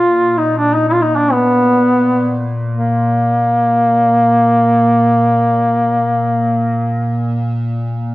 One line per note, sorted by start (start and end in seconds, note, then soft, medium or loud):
0.00 8.15 A#2 soft
0.00 0.39 F4 medium
0.38 0.57 D#4 medium
0.58 0.77 D4 medium
0.75 0.88 D#4 medium
0.89 1.03 F4 medium
1.02 1.18 D#4 medium
1.16 1.33 D4 medium
1.32 2.40 B3 medium
2.74 7.67 A#3 medium